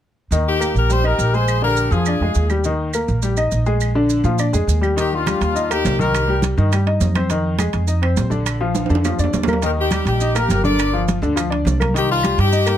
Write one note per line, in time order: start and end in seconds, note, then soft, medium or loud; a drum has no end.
0.31 0.72 D#2 medium
0.31 0.56 D#3 medium
0.31 0.56 D#4 medium
0.31 maracas medium
0.47 0.74 D#4 medium
0.47 0.75 G4 medium
0.59 0.84 A#3 medium
0.59 0.84 A#4 medium
0.59 claves medium
0.59 maracas medium
0.74 1.16 A#1 medium
0.74 0.91 G4 medium
0.74 maracas soft
0.79 0.92 A#4 medium
0.89 1.02 G3 medium
0.89 1.02 G4 medium
0.89 1.05 G4 medium
0.89 1.06 C5 medium
0.89 maracas medium
1.03 1.28 D#4 medium
1.03 1.34 G4 medium
1.03 1.35 A#4 loud
1.03 1.28 D#5 medium
1.03 claves medium
1.18 1.86 A#1 medium
1.18 maracas medium
1.33 1.57 G#3 medium
1.33 1.58 G#4 medium
1.33 1.64 G#4 medium
1.33 1.63 C5 medium
1.33 maracas soft
1.48 claves medium
1.48 maracas medium
1.62 1.86 D3 medium
1.62 1.86 D4 medium
1.62 1.90 G4 medium
1.62 1.90 A#4 loud
1.77 maracas medium
1.91 2.18 F2 medium
1.91 2.04 F3 medium
1.91 2.04 F4 medium
1.91 2.51 F4 medium
1.91 2.50 G#4 medium
1.91 maracas soft
2.06 2.19 D4 medium
2.06 2.19 D5 medium
2.06 claves medium
2.06 maracas medium
2.20 2.34 F2 medium
2.20 2.45 G#3 medium
2.20 2.46 G#4 medium
2.35 3.03 D#2 medium
2.35 maracas medium
2.50 2.62 G3 medium
2.50 2.62 G4 medium
2.50 claves medium
2.50 maracas soft
2.64 2.89 D#3 medium
2.64 2.89 D#4 medium
2.64 maracas medium
2.93 3.18 A#3 medium
2.93 3.18 A#4 medium
2.93 claves medium
2.93 maracas medium
3.08 3.49 A#1 medium
3.08 maracas soft
3.22 3.35 G3 medium
3.22 3.35 G4 medium
3.22 maracas medium
3.37 3.61 D#4 medium
3.37 3.61 D#5 medium
3.37 claves medium
3.37 maracas medium
3.51 4.19 A#1 medium
3.51 maracas medium
3.66 3.90 G#3 medium
3.66 3.90 G#4 medium
3.66 maracas soft
3.80 claves medium
3.80 maracas medium
3.95 4.19 D3 medium
3.95 4.19 D4 medium
4.10 maracas medium
4.24 4.51 A#2 medium
4.24 4.37 F3 medium
4.24 4.37 F4 medium
4.24 maracas soft
4.38 4.51 D4 medium
4.38 4.51 D5 medium
4.38 claves medium
4.38 maracas medium
4.53 4.67 F2 medium
4.53 4.77 G#3 medium
4.53 4.77 G#4 medium
4.53 maracas medium
4.67 5.35 D#2 medium
4.67 maracas medium
4.81 4.94 G3 medium
4.81 4.94 G4 medium
4.81 claves medium
4.81 maracas soft
4.96 5.21 D#3 medium
4.96 5.21 D#4 medium
4.96 5.12 D#4 medium
4.96 5.12 G4 medium
4.96 high conga soft
4.96 high timbale medium
4.96 maracas medium
5.12 5.42 D4 medium
5.12 5.42 F4 medium
5.12 high conga soft
5.26 5.50 G3 medium
5.26 5.51 G4 medium
5.26 high conga medium
5.26 high timbale medium
5.26 low timbale medium
5.26 claves medium
5.26 maracas medium
5.41 5.81 D#2 medium
5.41 5.69 D4 medium
5.41 5.70 F4 medium
5.41 high conga soft
5.41 high timbale medium
5.41 maracas soft
5.55 5.67 D#4 medium
5.55 5.67 D#5 medium
5.55 high conga soft
5.55 maracas medium
5.70 5.94 A#3 medium
5.70 5.98 D#4 medium
5.70 5.98 G4 medium
5.70 5.94 A#4 medium
5.70 high conga soft
5.70 high timbale medium
5.70 claves medium
5.70 maracas medium
5.85 6.52 C2 medium
5.85 high conga medium
5.85 high timbale medium
5.85 low timbale medium
5.85 maracas medium
5.99 6.23 D#3 medium
5.99 6.23 D#4 medium
5.99 6.44 G4 medium
5.99 6.43 A#4 loud
5.99 high conga medium
5.99 maracas soft
6.14 high conga soft
6.14 high timbale medium
6.14 claves medium
6.14 maracas medium
6.28 6.52 G3 medium
6.28 6.52 G4 medium
6.28 high conga soft
6.42 high conga medium
6.42 high timbale medium
6.42 low timbale medium
6.42 maracas medium
6.57 6.98 G2 medium
6.57 6.69 D#3 medium
6.57 6.69 D#4 medium
6.57 high conga soft
6.57 maracas soft
6.71 6.84 G3 medium
6.71 6.84 G4 medium
6.71 high conga soft
6.71 high timbale loud
6.71 claves medium
6.71 maracas medium
6.86 7.10 D#4 medium
6.86 7.10 D#5 medium
6.86 high conga soft
6.86 high timbale medium
7.00 7.68 F2 medium
7.00 high conga medium
7.00 low timbale medium
7.00 maracas medium
7.15 7.28 C4 medium
7.15 7.28 C5 medium
7.15 high conga medium
7.15 high timbale medium
7.15 claves medium
7.15 maracas soft
7.30 7.54 D#3 medium
7.30 7.54 D#4 medium
7.30 high conga soft
7.30 high timbale medium
7.30 maracas medium
7.44 high conga soft
7.59 7.83 G#3 medium
7.59 7.83 G#4 medium
7.59 high conga medium
7.59 high timbale medium
7.59 low timbale medium
7.59 claves medium
7.59 maracas medium
7.73 8.14 F2 medium
7.73 high conga soft
7.73 high timbale medium
7.73 maracas soft
7.87 8.00 D#4 medium
7.87 8.00 D#5 medium
7.87 high conga soft
7.87 maracas medium
8.02 8.26 C4 medium
8.02 8.26 C5 medium
8.02 high conga soft
8.02 high timbale medium
8.02 claves medium
8.16 8.84 A#1 medium
8.16 high conga medium
8.16 high timbale medium
8.16 low timbale medium
8.16 maracas medium
8.30 8.54 D3 medium
8.30 8.55 D4 medium
8.30 high conga medium
8.30 maracas soft
8.46 high conga soft
8.46 high timbale medium
8.46 claves medium
8.46 maracas medium
8.60 8.84 F3 medium
8.60 8.85 F4 medium
8.60 high conga soft
8.75 high conga medium
8.75 high timbale medium
8.75 maracas medium
8.86 9.17 F2 medium
8.86 9.02 D4 medium
8.86 high conga soft
8.86 high timbale medium
8.86 maracas soft
8.90 9.02 D3 medium
8.95 high timbale medium
9.04 9.17 F3 medium
9.04 9.17 F4 medium
9.04 high conga soft
9.04 low timbale loud
9.04 claves medium
9.04 maracas medium
9.18 9.32 F2 medium
9.18 9.43 D4 medium
9.18 9.43 D5 medium
9.18 high conga soft
9.18 maracas medium
9.24 low timbale medium
9.33 10.00 D#2 medium
9.33 high conga medium
9.33 low timbale medium
9.33 maracas medium
9.43 high conga medium
9.43 low timbale loud
9.48 9.60 A#3 medium
9.48 9.60 A#4 medium
9.48 claves medium
9.48 maracas soft
9.53 low timbale medium
9.62 9.86 D#3 medium
9.62 9.86 D#4 medium
9.62 9.71 G4 medium
9.62 9.72 A#4 medium
9.62 high timbale medium
9.62 maracas medium
9.77 10.05 D#4 medium
9.77 10.05 G4 medium
9.77 high conga soft
9.91 10.15 G3 medium
9.91 10.15 G4 medium
9.91 high conga medium
9.91 high timbale loud
9.91 low timbale medium
9.91 claves medium
9.91 maracas medium
10.05 10.46 A#1 medium
10.05 10.34 D#4 medium
10.05 10.34 G4 medium
10.05 high conga soft
10.05 high timbale medium
10.05 maracas soft
10.20 10.33 D#4 medium
10.20 10.33 D#5 medium
10.20 high conga soft
10.20 maracas medium
10.35 10.59 A#3 medium
10.35 10.65 G4 medium
10.35 10.59 A#4 medium
10.35 10.65 A#4 loud
10.35 high conga soft
10.35 high timbale medium
10.35 claves medium
10.35 maracas medium
10.48 11.16 G1 medium
10.48 high conga medium
10.48 high timbale medium
10.48 low timbale medium
10.48 maracas medium
10.64 10.88 D3 medium
10.64 10.88 D4 medium
10.64 11.06 A#4 medium
10.64 11.05 D5 medium
10.64 high conga medium
10.64 maracas soft
10.79 high conga soft
10.79 high timbale loud
10.79 claves medium
10.79 maracas medium
10.93 11.17 F3 medium
10.93 11.17 F4 medium
10.93 high conga soft
11.08 high conga medium
11.08 high timbale medium
11.08 low timbale medium
11.08 maracas medium
11.22 11.62 D2 medium
11.22 11.34 D3 medium
11.22 11.34 D4 medium
11.22 high conga soft
11.22 maracas soft
11.36 11.48 F3 medium
11.36 11.48 F4 medium
11.36 high conga soft
11.36 high timbale medium
11.36 claves medium
11.36 maracas medium
11.50 11.74 D4 medium
11.50 11.74 D5 medium
11.50 high conga soft
11.50 high timbale medium
11.65 12.32 C2 medium
11.65 high conga medium
11.65 low timbale medium
11.65 maracas medium
11.80 11.92 A#3 medium
11.80 11.92 A#4 medium
11.80 high conga medium
11.80 high timbale medium
11.80 claves medium
11.80 maracas soft
11.94 12.18 D#3 medium
11.94 12.18 D#4 medium
11.94 12.09 D#4 medium
11.94 high conga soft
11.94 high timbale medium
11.94 maracas medium
11.98 12.10 G4 medium
12.10 12.37 D4 medium
12.10 12.37 F4 loud
12.10 high conga soft
12.23 12.47 G3 medium
12.23 12.48 G4 medium
12.23 high conga medium
12.23 high timbale medium
12.23 low timbale medium
12.23 claves medium
12.23 maracas medium
12.38 12.78 G2 medium
12.38 12.78 D#4 medium
12.38 12.78 G4 loud
12.38 high timbale medium
12.38 maracas soft
12.52 12.64 D#4 medium
12.52 12.65 D#5 medium
12.52 high conga soft
12.52 maracas medium
12.66 12.78 A#3 medium
12.66 12.78 A#4 medium
12.66 high conga soft
12.66 high timbale medium
12.66 claves medium
12.66 maracas medium